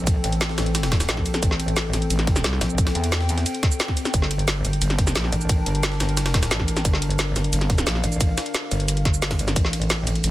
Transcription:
Already playing: A#1 C4 A4 G5
0.07 kick, closed hi-hat, ride, shaker
0.24 A1, closed hi-hat, ride
0.32 closed hi-hat
0.41 snare, closed hi-hat, ride, shaker
0.49 snare
0.58 snare, closed hi-hat, ride, shaker
0.66 closed hi-hat
0.75 snare, closed hi-hat, ride, shaker
0.83 snare, closed hi-hat, ride
0.92 kick, snare, closed hi-hat, ride
1.00 snare, ride, shaker
1.09 A#1, snare, closed hi-hat, ride, shaker
1.17 kick, snare
1.26 closed hi-hat, ride, shaker
1.34 snare, closed hi-hat, shaker
1.43 A1, kick, closed hi-hat, ride, shaker
1.51 snare
1.60 closed hi-hat, ride
1.68 closed hi-hat
1.76 snare, closed hi-hat, ride, shaker
1.93 A1, snare, closed hi-hat, ride, shaker
2.02 closed hi-hat
2.10 A1, closed hi-hat, ride, shaker
2.19 snare, closed hi-hat
2.27 kick, snare, closed hi-hat, ride
2.36 snare, shaker
2.44 C2, snare, closed hi-hat, ride, shaker
2.53 snare
2.61 A#1, snare, closed hi-hat, ride, shaker
2.70 shaker
2.78 kick, closed hi-hat, ride, shaker
2.87 snare, ride
2.95 E2, closed hi-hat
3.04 closed hi-hat, ride
3.12 snare, closed hi-hat, ride, shaker
3.21 snare
3.29 closed hi-hat, ride, shaker
3.38 snare, closed hi-hat
3.46 closed hi-hat, ride, shaker
3.54 closed hi-hat
3.63 kick, snare, closed hi-hat, ride
3.71 shaker
3.80 snare, closed hi-hat, ride, shaker
3.88 kick, snare
3.97 closed hi-hat, ride, shaker
4.05 snare, closed hi-hat, shaker
4.14 G1 D4 A#4, kick, closed hi-hat, ride, shaker
4.22 snare
4.31 closed hi-hat, ride
4.39 closed hi-hat
4.48 snare, closed hi-hat, ride, shaker
4.65 G1, closed hi-hat, ride, shaker
4.73 closed hi-hat
4.82 G1, closed hi-hat, ride, shaker
4.90 snare, closed hi-hat
4.98 kick, snare, closed hi-hat, ride
5.07 snare, shaker
5.15 A#1, snare, closed hi-hat, ride, shaker
5.24 snare
5.32 A1, closed hi-hat, ride, shaker
5.41 shaker
5.49 kick, closed hi-hat, ride, shaker
5.66 G1, closed hi-hat, ride
5.75 closed hi-hat
5.83 snare, closed hi-hat, ride, shaker
5.92 snare
6.00 snare, closed hi-hat, ride, shaker
6.09 closed hi-hat
6.17 snare, closed hi-hat, ride, shaker
6.26 snare, closed hi-hat, ride
6.34 kick, snare, closed hi-hat, ride
6.43 snare, ride, shaker
6.51 A1, snare, closed hi-hat, ride, shaker
6.60 kick, snare
6.68 closed hi-hat, ride, shaker
6.77 snare, closed hi-hat, shaker
6.85 G1 F5, kick, closed hi-hat, ride, shaker
6.93 snare
7.02 closed hi-hat, ride
7.10 closed hi-hat
7.19 snare, closed hi-hat, ride, shaker
7.36 G1, snare, closed hi-hat, ride, shaker
7.44 closed hi-hat
7.53 G1, closed hi-hat, ride, shaker
7.61 snare, closed hi-hat
7.70 kick, snare, closed hi-hat, ride
7.78 snare, shaker
7.87 A#1, snare, closed hi-hat, ride, shaker
7.95 snare
8.04 A1, closed hi-hat, ride, shaker
8.12 shaker
8.21 kick, closed hi-hat, ride, shaker
8.38 snare, closed hi-hat, ride, shaker
8.46 closed hi-hat
8.54 snare, closed hi-hat, ride, shaker
8.71 G1, closed hi-hat, ride, shaker
8.80 closed hi-hat
8.88 closed hi-hat, ride, shaker
8.97 closed hi-hat
9.05 kick, snare, closed hi-hat
9.14 shaker
9.22 snare, closed hi-hat, ride, shaker
9.31 kick, snare, ride
9.39 closed hi-hat, ride, shaker
9.48 snare, closed hi-hat, shaker
9.56 A1 C4 A4 G5, kick, closed hi-hat, ride, shaker
9.65 snare
9.73 closed hi-hat, ride
9.82 closed hi-hat
9.90 snare, closed hi-hat, ride, shaker
10.07 A1, closed hi-hat, ride, shaker
10.15 closed hi-hat
10.24 A1, closed hi-hat, ride, shaker

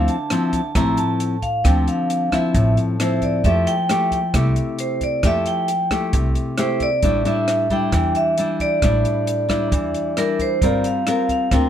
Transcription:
Already playing: D3 F3 C4 E4
0.08 A5, closed hi-hat
0.30 F3 C4 E4, cross-stick, closed hi-hat
0.53 A5, kick, closed hi-hat
0.75 A1 A2 F3 C4 E4 A#5, kick, cross-stick, closed hi-hat
0.97 A5, closed hi-hat
1.20 closed hi-hat
1.42 F5, kick, closed hi-hat
1.64 D2 D3 F3 C4 G5, kick, cross-stick, closed hi-hat
1.88 F5, closed hi-hat
2.10 closed hi-hat
2.32 F3 C4 E4 E5, kick, cross-stick, closed hi-hat
2.54 A1 A2, kick, closed hi-hat
2.77 closed hi-hat
3.00 F3 C4 E4 C5, cross-stick, closed hi-hat
3.22 D5, kick, closed hi-hat
3.44 F2 F3 A3 E4 G4 E5, kick, closed hi-hat
3.67 G5, closed hi-hat
3.89 A3 E4 G4, cross-stick, closed hi-hat
4.11 G5, kick, closed hi-hat
4.34 C2 C3 A3 E4 G4, kick, cross-stick, closed hi-hat
4.56 closed hi-hat
4.79 C5, closed hi-hat
5.01 D5, kick, closed hi-hat
5.23 F2 F3 A3 E4 G4 E5, kick, cross-stick, closed hi-hat
5.46 G5, closed hi-hat
5.68 closed hi-hat
5.91 A3 E4 G4 G5, kick, cross-stick, closed hi-hat
6.13 C2 C3, kick, closed hi-hat
6.35 closed hi-hat
6.58 A3 E4 G4 C5, cross-stick, closed hi-hat
6.80 D5, kick, closed hi-hat
7.03 A1 A2 G3 D4 E4, kick, closed hi-hat
7.25 G3 D4 E4 E5, closed hi-hat
7.48 cross-stick, closed hi-hat
7.70 G3 D4 E4 G5, kick, closed hi-hat
7.92 E2 E3 G5, kick, cross-stick, closed hi-hat
8.15 E5, closed hi-hat
8.38 G3 D4 E4, closed hi-hat
8.60 D5, kick, closed hi-hat
8.82 A1 A2 G3 D4 E4, kick, cross-stick, closed hi-hat
9.05 closed hi-hat
9.27 closed hi-hat
9.49 G3 D4 E4, kick, cross-stick, closed hi-hat
9.72 E2 E3, kick, closed hi-hat
9.94 closed hi-hat
10.17 G3 D4 E4 A#4, cross-stick, closed hi-hat
10.39 C5, kick, closed hi-hat
10.61 G1 G3 C4 F4 A#4 C5 D5, kick, closed hi-hat
10.65 F5
10.84 F5, closed hi-hat
11.07 C4 F4 A#4, cross-stick, closed hi-hat
11.29 F5, kick, closed hi-hat
11.51 D2 D3 C4 F4 A#4 G5, kick, cross-stick, closed hi-hat

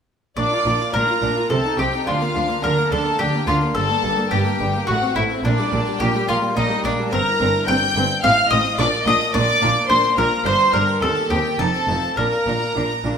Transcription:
0.37 A#1 A#2 D4 D5 D6
0.51 F4
0.65 A#1 A#2 D4
0.79 F4
0.93 A#1 A#2 D4 A#4 A#5
1.07 F4 A#4
1.22 A#1 A#2 D4 F4
1.36 A#3 F4
1.49 C2 C3 C4 A4 A5
1.64 D#4
1.78 C2 C3 C4 D#4 G4 G5
1.92 D#4 A4
2.06 D2 D3 D4 F4 F5
2.21 A#3 A#4
2.34 D2 D3 D4
2.48 A#3 A#4
2.62 D2 D3 D4 A#4 A#5
2.77 A#3 A#4
2.90 D2 D3 D4 A4 A5
3.05 A#3
3.19 D2 D3 D4 G4 G5
3.33 A#3
3.46 D2 D3 D4 F4 A#4 F5
3.61 A#3
3.75 G1 G2 G3 A4 A5
3.88 A#3 D4
4.02 G1 G2 G3 A#3
4.16 A#3 D4
4.31 G1 G2 G3 A#3 G4 G5
4.45 A#3 A#4
4.59 G1 G2 G3 D4
4.73 A#3
4.87 A1 A2 A3 F#4 F#5
5.01 C4
5.15 A1 A2 A3 E4 E5
5.30 C4
5.43 A#1 A#2 A#3 D4 D5
5.58 G3 G4
5.71 A#1 A#2 A#3 D4
5.86 G3 G4
5.99 A#1 A#2 A#3 D4 G4 G5
6.14 G3 A#4
6.27 A#1 A#2 A#3 F4 G4 F5
6.42 G3 A#3
6.56 A#1 A#2 A#3 D4 D#4 D#5
6.70 G3 A#3
6.83 A#1 A#2 A#3 D4 G4 D5
6.98 G3 A#3
7.12 G1 G2 C4 A#4 A#5
7.26 E4
7.40 G1 G2 C4
7.54 E4
7.68 G1 G2 C4 G5 G6
7.81 G4
7.95 G1 G2 C4 E4
8.23 A1 A2 C4 F5 F6
8.37 F4
8.50 A1 A2 C4 D#5 D#6
8.65 F4
8.78 A#1 A#2 D4 D5 D6
8.92 F4
9.05 A#1 A#2 D4 D#5 D#6
9.20 F4
9.34 A#1 A#2 D4 D5 D6
9.48 A#4
9.61 A#1 A#2 D4 F4
9.75 A#3
9.88 A#1 A#2 D4 C5 C6
10.03 A#3
10.16 A#1 A#2 D4 F4 A#4 A#5
10.31 A#3
10.45 G1 G2 D4 C5 C6
10.59 G4
10.73 G1 G2 D4 A#4 A#5
10.87 G4
11.01 D#2 C4 A4 A5
11.15 G4
11.30 D#2 C4 D#4 G4 G5
11.45 G4
11.59 F1 F2 D#4 A4 A5
11.74 C5
11.88 F1 F2 D#4 F4
12.03 C5
12.16 A#1 A#2 D4 A#4 A#5
12.31 F4
12.46 A#1 A#2 D4
12.60 F4
12.75 A#1 A#2 D4
12.89 A#4
13.04 A#1 A#2 D4 F4

